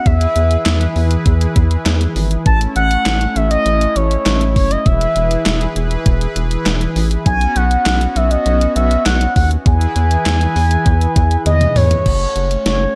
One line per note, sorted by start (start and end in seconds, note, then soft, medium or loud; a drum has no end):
0.06 0.27 E2 loud
0.06 2.43 E3 medium
0.06 2.43 E4 medium
0.06 2.44 G#4 medium
0.06 2.43 B4 medium
0.06 1.26 E5 loud
0.06 kick loud
0.06 closed hi-hat medium
0.21 closed hi-hat medium
0.36 0.57 E2 loud
0.36 closed hi-hat medium
0.51 closed hi-hat medium
0.66 0.87 E2 loud
0.66 snare loud
0.66 clap loud
0.66 closed hi-hat medium
0.81 closed hi-hat medium
0.96 1.17 E2 medium
0.96 open hi-hat medium
1.11 closed hi-hat medium
1.26 1.47 E2 loud
1.26 kick loud
1.26 closed hi-hat medium
1.41 closed hi-hat medium
1.56 1.77 E2 medium
1.56 kick medium
1.56 closed hi-hat medium
1.71 closed hi-hat medium
1.86 2.07 E2 loud
1.86 snare loud
1.86 clap medium
1.86 closed hi-hat medium
2.01 closed hi-hat medium
2.16 2.37 G#1 loud
2.16 open hi-hat medium
2.31 closed hi-hat medium
2.46 2.67 A1 loud
2.46 4.84 A3 medium
2.46 4.84 C#4 medium
2.46 7.22 E4 medium
2.46 2.59 A5 loud
2.46 kick loud
2.46 closed hi-hat medium
2.61 closed hi-hat medium
2.76 2.97 A1 loud
2.76 3.37 F#5 loud
2.76 closed hi-hat medium
2.91 closed hi-hat medium
3.06 3.27 A1 loud
3.06 snare loud
3.06 clap loud
3.06 closed hi-hat medium
3.21 closed hi-hat medium
3.36 3.57 A1 loud
3.36 3.50 E5 loud
3.36 closed hi-hat medium
3.51 3.97 D#5 loud
3.51 closed hi-hat medium
3.66 3.87 A1 loud
3.66 closed hi-hat medium
3.81 closed hi-hat medium
3.96 4.17 A1 loud
3.96 4.56 C#5 loud
3.96 closed hi-hat medium
4.11 closed hi-hat medium
4.26 4.58 A1 loud
4.26 snare loud
4.26 clap medium
4.26 closed hi-hat medium
4.41 closed hi-hat medium
4.56 4.77 F#1 medium
4.56 4.73 C#5 medium
4.56 kick loud
4.56 open hi-hat medium
4.71 4.88 D#5 medium
4.71 closed hi-hat medium
4.86 5.07 E1 loud
4.86 7.24 E3 medium
4.86 7.24 G#4 medium
4.86 7.24 B4 loud
4.86 6.06 E5 loud
4.86 kick loud
4.86 closed hi-hat medium
5.01 closed hi-hat medium
5.16 5.37 E1 loud
5.16 closed hi-hat medium
5.31 closed hi-hat medium
5.46 5.67 E1 loud
5.46 snare loud
5.46 clap loud
5.46 closed hi-hat medium
5.61 closed hi-hat medium
5.76 5.97 E1 loud
5.76 closed hi-hat medium
5.91 closed hi-hat medium
6.06 6.27 E1 loud
6.06 kick loud
6.06 closed hi-hat medium
6.21 closed hi-hat medium
6.36 6.57 E1 medium
6.36 closed hi-hat medium
6.51 closed hi-hat medium
6.66 6.87 E1 loud
6.66 snare loud
6.66 clap medium
6.66 closed hi-hat medium
6.81 closed hi-hat medium
6.96 7.17 A1 loud
6.96 open hi-hat medium
7.11 closed hi-hat medium
7.26 7.47 B1 loud
7.26 9.64 B3 medium
7.26 9.64 C#4 medium
7.26 9.64 F#4 medium
7.26 7.58 G#5 loud
7.26 kick loud
7.26 closed hi-hat medium
7.41 closed hi-hat medium
7.56 7.77 B1 loud
7.56 8.18 F#5 loud
7.56 closed hi-hat medium
7.71 closed hi-hat medium
7.86 8.07 B1 loud
7.86 snare loud
7.86 clap loud
7.86 closed hi-hat medium
8.01 closed hi-hat medium
8.16 8.37 B1 loud
8.16 8.31 E5 medium
8.16 closed hi-hat medium
8.31 8.73 D#5 loud
8.31 closed hi-hat medium
8.46 8.67 B1 loud
8.46 closed hi-hat medium
8.61 closed hi-hat medium
8.76 8.97 B1 loud
8.76 9.04 E5 medium
8.76 closed hi-hat medium
8.91 closed hi-hat medium
9.06 9.27 B1 loud
9.06 9.34 F#5 loud
9.06 snare loud
9.06 clap medium
9.06 closed hi-hat medium
9.21 closed hi-hat medium
9.36 9.57 D#2 loud
9.36 9.49 F#5 medium
9.36 kick loud
9.36 open hi-hat medium
9.51 closed hi-hat medium
9.66 9.87 E2 loud
9.66 12.04 E3 medium
9.66 12.04 E4 medium
9.66 12.04 G#4 medium
9.66 12.04 B4 medium
9.66 11.42 G#5 loud
9.66 kick loud
9.66 closed hi-hat medium
9.81 closed hi-hat medium
9.96 10.17 E2 loud
9.96 closed hi-hat medium
10.11 closed hi-hat medium
10.26 10.47 E2 loud
10.26 snare loud
10.26 clap loud
10.26 closed hi-hat medium
10.41 closed hi-hat medium
10.56 10.77 E2 loud
10.56 open hi-hat medium
10.71 closed hi-hat medium
10.86 11.07 E2 loud
10.86 kick loud
10.86 closed hi-hat medium
11.01 closed hi-hat medium
11.16 11.37 E2 loud
11.16 kick loud
11.16 closed hi-hat medium
11.31 closed hi-hat medium
11.46 11.67 E2 loud
11.46 11.78 D#5 loud
11.46 closed hi-hat medium
11.46 high tom medium
11.61 closed hi-hat medium
11.61 mid tom medium
11.76 11.97 E2 medium
11.76 12.65 C#5 loud
11.76 mid tom loud
11.76 open hi-hat medium
11.91 closed hi-hat medium
11.91 floor tom medium
12.06 12.27 F#1 loud
12.06 12.95 A3 medium
12.06 12.95 C#4 medium
12.06 12.95 F#4 medium
12.06 kick loud
12.06 closed hi-hat medium
12.06 crash medium
12.36 12.57 F#1 loud
12.36 closed hi-hat medium
12.51 closed hi-hat medium
12.66 12.87 F#1 loud
12.66 12.95 C#5 loud
12.66 snare loud
12.66 closed hi-hat medium